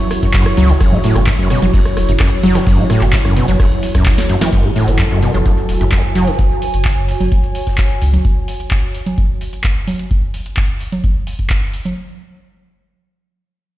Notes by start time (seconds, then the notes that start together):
Already playing: F#3 E4 F#4 C#5 C#6
0.11 cross-stick, closed hi-hat, open hi-hat
0.22 F#2, kick, snare, closed hi-hat, shaker
0.33 F#2, kick, snare, clap, closed hi-hat, ride, shaker
0.46 cross-stick, closed hi-hat, shaker
0.57 C#2 F#3, closed hi-hat, open hi-hat
0.69 C#3, snare, closed hi-hat, shaker
0.80 F#1 F#2, kick, cross-stick, closed hi-hat, ride, shaker
0.92 A2, low conga, shaker
1.04 A2, closed hi-hat, open hi-hat
1.16 F#1 B2, cross-stick, closed hi-hat, shaker
1.27 F#2, kick, snare, clap, closed hi-hat, ride, shaker
1.39 F#2, closed hi-hat, shaker
1.50 B2, cross-stick, closed hi-hat, open hi-hat
1.62 F#1 F#3, closed hi-hat, low conga, shaker
1.73 F#2, kick, closed hi-hat, ride, shaker
1.85 cross-stick, closed hi-hat, shaker
1.97 E1, cross-stick, snare, closed hi-hat, open hi-hat
2.08 F#1 F#2, closed hi-hat, shaker
2.20 F#2, kick, cross-stick, snare, clap, closed hi-hat, ride, shaker
2.32 shaker
2.43 F#1 F#3, snare, closed hi-hat, open hi-hat, low conga
2.55 C#3, cross-stick, snare, closed hi-hat, low conga, shaker
2.66 F#1 F#2, kick, snare, closed hi-hat, ride, shaker
2.78 A2, low conga, shaker
2.90 A2, cross-stick, closed hi-hat, open hi-hat
3.01 F#1 B2, clap, closed hi-hat, shaker
3.13 F#2, kick, snare, clap, closed hi-hat, ride, shaker
3.24 F#2, cross-stick, shaker
3.36 B2, snare, closed hi-hat, open hi-hat
3.48 F#1 F#3, snare, closed hi-hat, low conga, shaker
3.58 F#2, kick, cross-stick, closed hi-hat, ride, shaker
3.71 closed hi-hat, shaker
3.83 closed hi-hat, open hi-hat
3.95 C#2 F#2, kick, cross-stick, snare, closed hi-hat, shaker
4.06 kick, snare, clap, closed hi-hat, ride, shaker
4.17 snare, closed hi-hat, shaker
4.29 F#2, closed hi-hat, open hi-hat
4.41 E3, snare, closed hi-hat, low conga, shaker
4.53 F#1 F#2 F#3 E4 F#4 A4, kick, closed hi-hat, crash, shaker
4.65 A2, shaker
4.76 A2, closed hi-hat, open hi-hat
4.88 F#1 B2, closed hi-hat, shaker
4.99 F#2, kick, snare, clap, closed hi-hat, shaker
5.08 F#2 G#5, closed hi-hat, shaker
5.22 B2, closed hi-hat, open hi-hat
5.27 C#5
5.34 F#1 F#3, closed hi-hat, low conga, shaker
5.46 F#2, kick, closed hi-hat, shaker
5.58 closed hi-hat, shaker
5.69 E1, snare, closed hi-hat, open hi-hat
5.81 F#1 F#2, closed hi-hat, shaker
5.92 F#2, kick, snare, clap, closed hi-hat, shaker
6.04 shaker
6.15 F#1 F#3, open hi-hat, low conga
6.27 C#3, snare, closed hi-hat, shaker
6.39 F#1, kick, closed hi-hat, shaker
6.50 shaker
6.62 closed hi-hat, open hi-hat
6.74 F#1, closed hi-hat, shaker
6.85 kick, snare, clap, closed hi-hat, shaker
6.97 shaker
7.08 snare, closed hi-hat, open hi-hat
7.20 F#1, snare, closed hi-hat, low conga, shaker
7.32 kick, closed hi-hat, shaker
7.44 closed hi-hat, shaker
7.55 closed hi-hat, open hi-hat
7.67 kick, snare, closed hi-hat, shaker
7.78 kick, snare, clap, closed hi-hat, shaker
7.90 closed hi-hat, shaker
8.01 C#2, closed hi-hat, open hi-hat
8.13 snare, closed hi-hat, low conga, shaker
8.25 kick, closed hi-hat
8.48 open hi-hat
8.60 closed hi-hat
8.71 kick, clap, closed hi-hat
8.95 open hi-hat
9.06 closed hi-hat, low conga
9.18 kick, closed hi-hat
9.41 open hi-hat
9.53 closed hi-hat
9.64 kick, clap, closed hi-hat
9.87 open hi-hat, low conga
9.99 closed hi-hat
10.11 kick, closed hi-hat
10.34 open hi-hat
10.46 closed hi-hat
10.57 kick, clap, closed hi-hat
10.80 open hi-hat
10.92 closed hi-hat, low conga
11.04 kick, closed hi-hat
11.27 open hi-hat
11.39 kick, closed hi-hat
11.50 kick, clap, closed hi-hat
11.73 open hi-hat
11.85 closed hi-hat, low conga